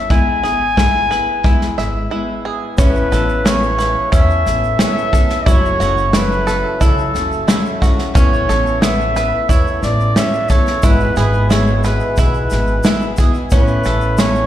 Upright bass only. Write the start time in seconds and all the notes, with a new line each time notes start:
Already playing: G1
0.10 G#1
1.78 G#1
2.78 A1
3.12 A1
4.13 E2
4.46 A1
5.47 F#1
5.80 F#1
6.81 C#2
7.15 F#1
8.16 A1
8.49 A1
9.49 E2
9.83 A1
10.83 G#1
11.17 G#1
12.18 B1
12.52 G#1
13.52 A1
13.86 A1